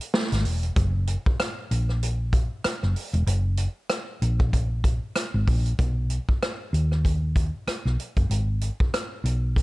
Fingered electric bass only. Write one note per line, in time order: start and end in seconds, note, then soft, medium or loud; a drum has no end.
0.32 0.46 G#1 medium
0.46 0.70 E1 loud
0.76 1.15 F#1 medium
1.71 2.48 A#1 medium
2.65 muted fingered electric bass stroke soft
2.83 2.93 F#1 medium
3.13 3.24 E1 medium
3.27 3.66 F#1 loud
4.22 4.99 A#1 medium
5.34 5.44 G#1 medium
5.47 5.72 A#1 medium
5.79 6.18 B1 medium
6.73 7.50 D#2 medium
7.67 muted fingered electric bass stroke soft
7.85 7.96 B1 medium
8.16 8.27 F#1 medium
8.29 8.69 G#1 medium
9.24 9.62 B1 medium